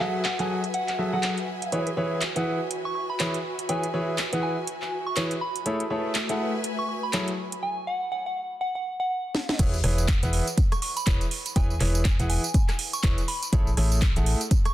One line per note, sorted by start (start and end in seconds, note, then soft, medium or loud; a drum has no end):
0.00 0.23 F#3 medium
0.00 1.71 F#4 medium
0.00 0.23 F#4 medium
0.00 0.23 G#4 medium
0.00 0.23 A4 medium
0.00 5.66 B4 medium
0.00 5.66 E5 medium
0.00 0.23 E5 medium
0.00 0.20 F#5 medium
0.00 5.66 G#5 medium
0.00 clap soft
0.25 0.34 F#5 medium
0.25 clap loud
0.25 closed hi-hat medium
0.39 0.61 F#3 medium
0.39 0.61 F#4 medium
0.39 0.61 G#4 medium
0.39 0.61 A4 medium
0.39 0.46 F#5 medium
0.39 0.61 G#5 medium
0.39 closed hi-hat soft
0.64 closed hi-hat soft
0.74 0.83 F#5 medium
0.74 closed hi-hat medium
0.88 0.95 F#5 medium
0.88 clap soft
0.88 closed hi-hat soft
0.99 1.11 F#3 medium
0.99 1.11 F#4 medium
0.99 1.11 G#4 medium
0.99 1.11 A4 medium
0.99 1.11 E5 medium
1.13 1.35 F#3 medium
1.13 1.35 F#4 medium
1.13 1.35 G#4 medium
1.13 1.35 A4 medium
1.13 1.35 F#5 medium
1.13 1.78 F#5 medium
1.23 clap loud
1.23 closed hi-hat medium
1.38 closed hi-hat soft
1.62 closed hi-hat soft
1.72 1.88 E3 medium
1.72 1.88 E4 medium
1.72 7.63 F#4 medium
1.72 1.88 G#4 medium
1.72 1.88 B4 medium
1.72 1.88 C#5 medium
1.72 closed hi-hat medium
1.87 closed hi-hat soft
1.97 2.19 E3 medium
1.97 2.19 E4 medium
1.97 2.19 G#4 medium
1.97 2.19 B4 medium
1.97 2.19 C#5 medium
2.21 clap loud
2.21 closed hi-hat medium
2.36 2.57 E3 medium
2.36 2.58 E4 medium
2.36 2.57 G#4 medium
2.36 2.57 B4 medium
2.36 2.57 F#5 medium
2.36 closed hi-hat soft
2.71 closed hi-hat medium
2.85 2.92 C#6 medium
2.95 3.04 C#6 medium
3.10 3.16 B5 medium
3.20 3.36 E3 medium
3.20 3.35 E4 medium
3.20 3.35 G#4 medium
3.20 3.35 B4 medium
3.20 3.36 C#5 loud
3.20 clap loud
3.20 closed hi-hat medium
3.34 closed hi-hat soft
3.59 closed hi-hat soft
3.69 3.85 E3 medium
3.69 3.85 E4 medium
3.69 3.85 G#4 medium
3.69 3.85 B4 medium
3.69 3.85 C#5 medium
3.69 3.89 G#5 medium
3.69 closed hi-hat medium
3.83 closed hi-hat soft
3.94 4.16 E3 medium
3.94 4.16 E4 medium
3.94 4.16 G#4 medium
3.94 4.16 B4 medium
3.94 4.16 C#5 loud
4.18 clap loud
4.18 closed hi-hat medium
4.33 4.54 E3 medium
4.33 4.54 E4 medium
4.33 4.54 G#4 medium
4.33 4.54 B4 medium
4.33 4.54 F#5 medium
4.33 closed hi-hat soft
4.43 4.92 G#5 medium
4.67 closed hi-hat medium
4.82 clap soft
5.07 5.25 C#6 medium
5.17 5.32 E3 medium
5.17 5.32 E4 medium
5.17 5.32 G#4 medium
5.17 5.32 B4 medium
5.17 5.32 C#5 loud
5.17 clap loud
5.17 closed hi-hat medium
5.31 closed hi-hat soft
5.41 5.72 B5 medium
5.56 closed hi-hat medium
5.66 5.81 A3 medium
5.66 7.38 A3 medium
5.66 5.81 E4 medium
5.66 5.81 G#4 medium
5.66 5.81 A4 medium
5.66 5.81 C#5 medium
5.66 closed hi-hat medium
5.80 7.63 B4 medium
5.80 closed hi-hat soft
5.90 6.13 A3 medium
5.90 6.13 E4 medium
5.90 6.13 G#4 medium
5.90 6.13 A4 medium
5.90 6.13 C#5 medium
5.96 7.63 E5 medium
6.15 clap loud
6.15 closed hi-hat medium
6.29 6.51 A3 medium
6.29 6.51 E4 medium
6.29 6.51 G#4 medium
6.29 6.51 A4 medium
6.29 6.51 F#5 medium
6.29 closed hi-hat soft
6.44 7.63 G#5 medium
6.64 closed hi-hat medium
6.79 6.85 C#6 medium
6.89 6.98 C#6 medium
7.03 7.10 B5 medium
7.13 7.29 F#3 medium
7.13 7.29 E4 medium
7.13 7.29 G#4 medium
7.13 7.29 A4 medium
7.13 7.29 C#5 loud
7.13 clap loud
7.13 closed hi-hat medium
7.28 closed hi-hat soft
7.52 closed hi-hat medium
7.63 7.83 G#5 medium
7.87 8.07 F#5 medium
8.12 8.21 F#5 medium
8.26 8.33 F#5 medium
8.61 8.70 F#5 medium
8.75 8.82 F#5 medium
9.00 9.59 F#5 medium
9.35 snare medium
9.49 snare medium
9.59 9.82 E1 loud
9.59 9.75 E3 medium
9.59 9.75 E4 medium
9.59 9.75 G#4 medium
9.59 9.75 B4 medium
9.59 9.75 C#5 loud
9.59 kick loud
9.59 closed hi-hat medium
9.59 crash loud
9.59 tambourine medium
9.74 tambourine soft
9.84 10.20 E1 loud
9.84 10.06 E3 medium
9.84 10.06 E4 medium
9.84 10.06 G#4 medium
9.84 10.06 B4 medium
9.84 10.06 C#5 loud
9.84 cross-stick medium
9.84 open hi-hat loud
9.98 tambourine medium
10.08 kick loud
10.08 clap loud
10.08 closed hi-hat medium
10.08 tambourine medium
10.23 10.41 E1 medium
10.23 10.44 E3 medium
10.23 10.44 E4 medium
10.23 10.44 G#4 medium
10.23 10.44 B4 medium
10.23 10.44 F#5 loud
10.23 closed hi-hat medium
10.23 tambourine soft
10.33 open hi-hat loud
10.47 closed hi-hat soft
10.47 tambourine medium
10.58 kick loud
10.58 closed hi-hat medium
10.58 tambourine medium
10.72 10.78 C#6 medium
10.72 cross-stick medium
10.72 closed hi-hat soft
10.72 tambourine soft
10.82 10.91 C#6 medium
10.82 open hi-hat loud
10.97 11.03 B5 medium
10.97 closed hi-hat soft
10.97 tambourine medium
11.07 11.20 E1 medium
11.07 11.22 E3 loud
11.07 11.22 E4 medium
11.07 11.22 G#4 medium
11.07 11.22 B4 medium
11.07 11.22 C#5 loud
11.07 11.16 B5 medium
11.07 kick loud
11.07 clap loud
11.07 closed hi-hat medium
11.07 tambourine medium
11.21 closed hi-hat soft
11.21 tambourine soft
11.31 open hi-hat medium
11.46 closed hi-hat medium
11.46 tambourine medium
11.56 11.78 E1 loud
11.56 11.72 E3 medium
11.56 11.72 E4 medium
11.56 11.72 G#4 medium
11.56 11.72 B4 medium
11.56 11.72 C#5 loud
11.56 11.76 G#5 medium
11.56 kick loud
11.56 closed hi-hat medium
11.56 tambourine medium
11.70 tambourine soft
11.80 12.17 E1 loud
11.80 12.03 E3 medium
11.80 12.03 E4 medium
11.80 12.03 G#4 medium
11.80 12.03 B4 medium
11.80 12.03 C#5 loud
11.80 cross-stick medium
11.80 clap soft
11.80 open hi-hat loud
11.95 tambourine medium
12.05 kick loud
12.05 clap loud
12.05 closed hi-hat medium
12.05 tambourine medium
12.19 12.38 E1 medium
12.19 12.41 E3 medium
12.19 12.41 E4 medium
12.19 12.41 G#4 medium
12.19 12.41 B4 medium
12.19 12.41 F#5 loud
12.19 closed hi-hat medium
12.19 tambourine soft
12.30 12.79 G#5 medium
12.30 open hi-hat loud
12.44 closed hi-hat soft
12.44 tambourine medium
12.54 kick loud
12.54 closed hi-hat medium
12.54 tambourine medium
12.69 cross-stick medium
12.69 clap soft
12.69 closed hi-hat soft
12.69 tambourine soft
12.79 open hi-hat loud
12.93 13.12 C#6 medium
12.93 closed hi-hat soft
12.93 tambourine medium
13.03 13.17 E1 loud
13.03 13.19 E3 loud
13.03 13.19 E4 medium
13.03 13.19 G#4 medium
13.03 13.19 B4 medium
13.03 13.19 C#5 loud
13.03 kick loud
13.03 clap loud
13.03 closed hi-hat medium
13.03 tambourine medium
13.18 closed hi-hat soft
13.18 tambourine soft
13.28 13.58 B5 medium
13.28 open hi-hat loud
13.43 closed hi-hat medium
13.43 tambourine medium
13.53 13.75 A1 loud
13.53 13.68 A3 medium
13.53 13.68 E4 medium
13.53 13.68 G#4 medium
13.53 13.68 A4 medium
13.53 13.68 C#5 loud
13.53 kick loud
13.53 closed hi-hat medium
13.53 tambourine medium
13.67 tambourine soft
13.77 14.13 A1 loud
13.77 14.00 A3 medium
13.77 14.00 E4 medium
13.77 14.00 G#4 medium
13.77 14.00 A4 medium
13.77 14.00 C#5 loud
13.77 cross-stick medium
13.77 open hi-hat loud
13.92 tambourine medium
14.02 kick loud
14.02 clap loud
14.02 closed hi-hat medium
14.16 14.35 A1 medium
14.16 14.38 A3 medium
14.16 14.38 E4 medium
14.16 14.38 G#4 medium
14.16 14.38 A4 medium
14.16 14.38 F#5 loud
14.16 closed hi-hat medium
14.16 tambourine soft
14.26 open hi-hat loud
14.41 closed hi-hat soft
14.41 tambourine medium
14.51 kick loud
14.51 closed hi-hat medium
14.51 tambourine medium
14.65 14.72 C#6 medium
14.65 cross-stick medium
14.65 closed hi-hat soft
14.65 tambourine soft